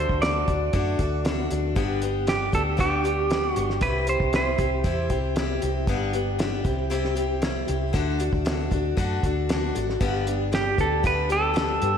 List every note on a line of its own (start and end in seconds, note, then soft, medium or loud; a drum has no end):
0.00 0.21 D4 soft
0.00 0.22 F#4 soft
0.00 0.22 A4 soft
0.00 0.21 C5 medium
0.09 0.45 D2 medium
0.09 kick medium
0.22 0.48 A3 medium
0.22 0.48 D4 medium
0.22 0.48 F#4 medium
0.22 0.46 A4 medium
0.22 1.21 D5 medium
0.22 snare loud
0.22 closed hi-hat medium
0.47 0.72 D2 medium
0.47 0.73 D4 soft
0.47 0.73 F#4 soft
0.47 0.74 A4 soft
0.47 kick medium
0.47 closed hi-hat medium
0.73 0.98 F#2 medium
0.73 0.99 D3 medium
0.73 1.00 A3 medium
0.73 1.00 D4 medium
0.73 1.00 F#4 medium
0.73 0.99 A4 medium
0.73 kick loud
0.73 closed hi-hat medium
0.99 1.47 D2 medium
0.99 1.24 D4 soft
0.99 1.25 F#4 soft
0.99 1.25 A4 medium
0.99 kick medium
0.99 closed hi-hat medium
1.25 1.51 A3 medium
1.25 1.51 D4 medium
1.25 1.50 F#4 medium
1.25 1.49 A4 medium
1.25 snare loud
1.25 closed hi-hat medium
1.50 1.75 D2 medium
1.50 1.76 D4 soft
1.50 1.77 F#4 soft
1.50 1.76 A4 soft
1.50 closed hi-hat medium
1.75 2.50 G1 loud
1.75 2.02 G2 medium
1.75 2.02 D3 medium
1.75 2.02 G3 medium
1.75 2.02 B3 medium
1.75 2.01 D4 medium
1.75 2.01 G4 medium
1.75 kick loud
1.75 closed hi-hat medium
2.02 2.25 G3 soft
2.02 2.27 B3 soft
2.02 2.27 D4 soft
2.02 2.28 G4 medium
2.02 closed hi-hat medium
2.27 2.53 G3 medium
2.27 2.53 B3 medium
2.27 2.52 D4 medium
2.27 2.54 G4 medium
2.27 2.51 G4 medium
2.27 snare loud
2.27 closed hi-hat medium
2.52 3.53 D2 medium
2.52 2.77 G3 soft
2.52 2.77 B3 soft
2.52 2.77 D4 soft
2.52 2.77 G4 medium
2.52 2.62 A4 medium
2.52 kick medium
2.52 closed hi-hat medium
2.77 3.04 G2 medium
2.77 3.04 D3 medium
2.77 3.04 G3 medium
2.77 3.04 B3 medium
2.77 3.04 D4 medium
2.77 3.03 G4 medium
2.77 3.50 G4 medium
2.77 kick medium
2.77 closed hi-hat medium
3.04 3.28 G3 soft
3.04 3.29 B3 soft
3.04 3.30 D4 soft
3.04 3.30 G4 soft
3.04 closed hi-hat medium
3.30 3.56 G3 medium
3.30 3.56 B3 medium
3.30 3.56 D4 medium
3.30 3.55 G4 medium
3.30 snare loud
3.30 closed hi-hat medium
3.50 3.82 F#4 medium
3.56 3.80 G1 medium
3.56 3.81 G3 soft
3.56 3.82 B3 soft
3.56 3.82 D4 soft
3.56 3.82 G4 soft
3.56 closed hi-hat medium
3.70 snare soft
3.81 4.18 C2 medium
3.81 4.07 C3 medium
3.81 4.08 G3 medium
3.81 4.08 C4 medium
3.81 4.08 E4 medium
3.81 4.06 G4 medium
3.81 4.09 B4 medium
3.81 kick loud
3.81 closed hi-hat medium
4.07 4.32 C4 soft
4.07 4.33 E4 soft
4.07 4.33 G4 soft
4.07 4.35 C5 medium
4.07 closed hi-hat medium
4.20 4.56 C2 medium
4.20 kick medium
4.33 4.59 G3 medium
4.33 4.59 C4 medium
4.33 4.58 E4 medium
4.33 4.57 G4 medium
4.33 5.34 C5 medium
4.33 snare loud
4.33 closed hi-hat medium
4.58 4.83 C2 medium
4.58 4.83 C4 soft
4.58 4.84 E4 soft
4.58 4.84 G4 soft
4.58 kick medium
4.58 closed hi-hat medium
4.84 5.08 E2 medium
4.84 5.10 C3 medium
4.84 5.10 G3 medium
4.84 5.11 C4 medium
4.84 5.11 E4 medium
4.84 5.09 G4 medium
4.84 kick medium
4.84 closed hi-hat medium
5.10 5.58 C2 medium
5.10 5.36 C4 soft
5.10 5.36 E4 soft
5.10 5.36 G4 medium
5.10 kick medium
5.10 closed hi-hat medium
5.36 5.62 G3 medium
5.36 5.63 C4 medium
5.36 5.62 E4 medium
5.36 5.61 G4 medium
5.36 snare loud
5.36 closed hi-hat medium
5.62 5.86 C2 medium
5.62 5.88 C4 soft
5.62 5.88 E4 soft
5.62 5.88 G4 soft
5.62 closed hi-hat medium
5.87 6.61 G1 medium
5.87 6.13 G2 medium
5.87 6.14 D3 medium
5.87 6.14 G3 medium
5.87 6.14 B3 medium
5.87 6.13 D4 medium
5.87 6.12 G4 medium
5.87 kick loud
5.87 closed hi-hat medium
6.13 6.37 G3 soft
6.13 6.39 B3 medium
6.13 6.40 D4 soft
6.13 6.39 G4 medium
6.13 closed hi-hat medium
6.39 6.65 G3 medium
6.39 6.65 B3 medium
6.39 6.65 D4 medium
6.39 6.63 G4 medium
6.39 snare loud
6.39 closed hi-hat medium
6.64 7.64 C2 medium
6.64 6.89 C4 soft
6.64 6.90 E4 soft
6.64 6.90 G4 medium
6.64 kick medium
6.64 closed hi-hat medium
6.90 7.16 C3 medium
6.90 7.17 G3 medium
6.90 7.16 C4 medium
6.90 7.16 E4 medium
6.90 7.14 G4 medium
6.90 closed hi-hat medium
7.05 snare soft
7.15 7.42 C4 soft
7.15 7.43 E4 soft
7.15 7.42 G4 medium
7.15 closed hi-hat medium
7.42 7.68 G3 medium
7.42 7.68 C4 medium
7.42 7.68 E4 medium
7.42 7.66 G4 medium
7.42 snare loud
7.42 closed hi-hat medium
7.67 7.93 C2 medium
7.67 7.93 C4 soft
7.67 7.94 E4 soft
7.67 7.94 G4 medium
7.67 closed hi-hat medium
7.93 8.30 D2 medium
7.93 8.19 D3 medium
7.93 8.20 A3 medium
7.93 8.20 D4 medium
7.93 8.19 F#4 medium
7.93 8.18 A4 medium
7.93 kick loud
7.93 closed hi-hat medium
8.19 8.45 D4 soft
8.19 8.45 F#4 soft
8.19 8.45 A4 medium
8.19 closed hi-hat medium
8.33 8.69 D2 medium
8.33 kick medium
8.45 8.71 A3 medium
8.45 8.72 D4 medium
8.45 8.72 F#4 medium
8.45 8.70 A4 medium
8.45 snare loud
8.45 closed hi-hat medium
8.71 8.96 D2 medium
8.71 8.97 D4 soft
8.71 8.97 F#4 soft
8.71 8.97 A4 medium
8.71 kick medium
8.71 closed hi-hat medium
8.97 9.21 F#2 medium
8.97 9.23 D3 medium
8.97 9.23 A3 medium
8.97 9.23 D4 medium
8.97 9.24 F#4 medium
8.97 9.22 A4 medium
8.97 kick loud
8.97 closed hi-hat medium
9.23 9.71 D2 medium
9.23 9.49 D4 soft
9.23 9.50 F#4 soft
9.23 9.49 A4 medium
9.23 kick medium
9.23 closed hi-hat medium
9.49 9.75 A3 medium
9.49 9.75 D4 medium
9.49 9.75 F#4 medium
9.49 9.74 A4 medium
9.49 snare loud
9.49 closed hi-hat medium
9.75 9.99 G#1 medium
9.75 10.00 D4 soft
9.75 10.01 F#4 soft
9.75 10.01 A4 medium
9.75 closed hi-hat medium
9.90 snare soft
10.00 10.74 G1 medium
10.00 10.26 G2 medium
10.00 10.26 D3 medium
10.00 10.26 G3 medium
10.00 10.26 B3 medium
10.00 10.26 D4 medium
10.00 10.25 G4 medium
10.00 kick loud
10.00 closed hi-hat medium
10.27 10.51 G3 soft
10.27 10.51 B3 soft
10.27 10.52 D4 medium
10.27 10.52 G4 medium
10.27 closed hi-hat medium
10.52 10.78 G3 medium
10.52 10.78 B3 medium
10.52 10.78 D4 medium
10.52 10.77 G4 medium
10.52 10.78 G4 medium
10.52 snare loud
10.52 closed hi-hat medium
10.78 11.78 D2 medium
10.78 11.03 G3 soft
10.78 11.04 B3 soft
10.78 11.04 D4 soft
10.78 11.04 G4 soft
10.78 11.06 A4 medium
10.78 kick medium
10.78 closed hi-hat medium
11.03 11.29 G2 medium
11.03 11.30 D3 medium
11.03 11.30 G3 medium
11.03 11.29 B3 medium
11.03 11.29 D4 medium
11.03 11.28 G4 medium
11.03 11.32 B4 medium
11.03 kick loud
11.03 closed hi-hat medium
11.29 11.52 G3 soft
11.29 11.54 B3 soft
11.29 11.54 D4 soft
11.29 11.55 G4 medium
11.29 11.98 A4 medium
11.29 closed hi-hat medium
11.54 11.80 G3 medium
11.54 11.81 B3 medium
11.54 11.81 D4 medium
11.54 11.80 G4 medium
11.54 snare loud
11.54 closed hi-hat medium
11.81 11.98 G2 medium
11.81 11.98 G3 soft
11.81 11.98 B3 soft
11.81 11.98 D4 soft
11.81 11.98 G4 soft
11.81 closed hi-hat medium